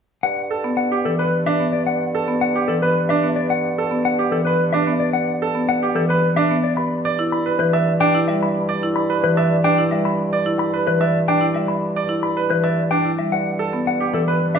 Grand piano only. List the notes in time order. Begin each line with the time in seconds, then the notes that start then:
0.51 A4
0.92 G4
1.19 B4
1.46 D4
2.15 A4
2.56 G4
2.83 B4
3.10 D4
3.78 A4
4.19 G4
4.47 B4
4.74 D4
5.42 A4
5.83 G4
6.10 B4
6.37 D4
7.05 D5
7.46 B4
7.73 E5
8.00 D4
8.69 D5
9.10 B4
9.37 E5
9.64 D4
10.33 D5
10.74 B4
11.01 E5
11.28 D4
11.96 D5
12.37 B4
12.64 E5
12.91 D4
13.59 A4
14.00 G4
14.28 B4
14.55 D4